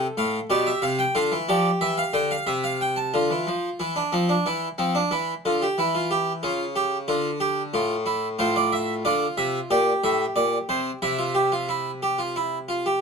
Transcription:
0.00 0.46 A4 medium
0.17 0.38 A2 medium
0.17 0.38 F5 medium
0.50 0.70 B2 medium
0.50 1.13 G4 medium
0.50 0.66 D5 medium
0.67 0.82 E5 medium
0.82 1.03 C3 medium
0.82 0.98 F5 medium
0.99 1.15 G5 medium
1.15 1.31 D3 medium
1.15 1.35 F4 medium
1.15 1.35 F5 medium
1.32 1.48 E3 medium
1.49 1.69 F3 medium
1.49 3.10 G4 medium
1.49 1.69 D5 medium
1.81 2.01 E3 medium
1.81 1.97 E5 medium
1.98 2.13 F5 medium
2.13 2.34 D3 medium
2.13 2.30 G5 medium
2.31 2.47 F5 medium
2.47 3.11 C3 medium
2.47 2.63 E5 medium
2.64 2.80 F5 medium
2.81 2.97 G5 medium
2.96 3.13 A5 medium
3.14 3.30 D3 medium
3.14 3.78 F4 medium
3.30 3.47 E3 medium
3.47 3.68 F3 medium
3.80 4.00 E3 medium
3.80 3.96 E4 medium
3.96 4.12 D4 medium
4.12 4.33 F3 medium
4.12 4.29 C4 medium
4.29 4.45 D4 medium
4.46 4.66 E3 medium
4.46 4.67 E4 medium
4.78 4.99 F3 medium
4.78 4.95 C4 medium
4.95 5.11 D4 medium
5.11 5.32 E3 medium
5.11 5.32 E4 medium
5.45 5.66 D3 medium
5.45 5.61 F4 medium
5.62 5.78 G4 medium
5.78 6.41 E3 medium
5.78 5.94 E4 medium
5.95 6.10 F4 medium
6.11 6.31 G4 medium
6.43 7.07 C#3 medium
6.43 6.63 F4 medium
6.76 6.96 G4 medium
7.08 7.72 D3 medium
7.08 7.28 F4 medium
7.40 7.61 G4 medium
7.74 8.37 A2 medium
7.74 7.94 F4 medium
8.06 8.26 E4 medium
8.39 9.02 A2 medium
8.39 9.02 F4 medium
8.39 8.55 C5 medium
8.56 8.71 D5 medium
8.72 8.92 E5 medium
9.05 9.25 D3 medium
9.05 9.68 F4 medium
9.05 9.25 D5 medium
9.37 9.58 C3 medium
9.37 9.58 E5 medium
9.71 9.91 A#2 medium
9.71 10.98 G4 medium
9.71 9.91 D5 medium
10.04 10.24 A2 medium
10.04 10.24 E5 medium
10.36 10.56 A#2 medium
10.36 10.56 D5 medium
10.69 10.89 C3 medium
10.69 10.89 C5 medium
11.02 13.01 C3 medium
11.02 11.18 E4 medium
11.02 13.01 E5 medium
11.18 11.34 F4 medium
11.35 11.51 G4 medium
11.52 11.68 F4 medium
11.69 11.89 E4 medium
12.03 12.18 G4 medium
12.19 12.35 F4 medium
12.36 12.57 E4 medium
12.69 12.85 F4 medium
12.86 13.01 G4 medium

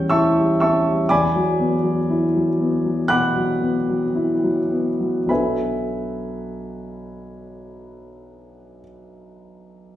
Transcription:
0.00 1.06 E2 medium
0.00 0.38 G3 soft
0.00 0.63 C#4 soft
0.00 1.11 G5 medium
0.00 0.10 C#6 medium
0.00 0.10 E6 medium
0.00 0.11 G6 loud
0.10 0.51 E4 soft
0.10 0.57 E5 medium
0.10 0.57 A5 medium
0.10 0.57 C#6 medium
0.10 0.59 E6 medium
0.38 0.76 G3 soft
0.60 1.00 C#4 soft
0.60 1.06 E5 medium
0.60 1.06 A5 medium
0.60 1.06 C#6 medium
0.60 1.09 E6 medium
0.87 1.10 G3 soft
1.09 3.04 E2 medium
1.09 3.04 D5 medium
1.09 3.04 G#5 medium
1.09 3.04 B5 medium
1.09 3.07 D6 medium
1.36 1.74 F#3 soft
1.60 1.98 B3 soft
1.83 2.22 F#3 soft
2.10 2.48 E4 soft
2.36 2.74 F#3 soft
2.61 2.99 B3 soft
2.86 3.24 F#3 soft
3.08 3.50 B2 soft
3.08 5.26 F#5 medium
3.08 5.27 B5 medium
3.08 5.27 D6 medium
3.08 5.30 F#6 loud
3.37 3.76 F#3 soft
3.61 4.03 B3 soft
3.89 4.31 F#3 soft
4.15 4.59 E4 soft
4.44 4.88 F#3 soft
4.71 5.18 B3 soft
5.00 5.26 F#3 soft
5.26 9.95 B1 soft
5.26 9.95 F#3 soft
5.26 9.96 B3 soft
5.26 9.96 D4 soft
5.26 8.84 B5 medium
5.30 9.96 A4 soft
5.30 8.81 B4 soft
5.30 8.81 E5 soft
5.30 8.81 G#5 soft

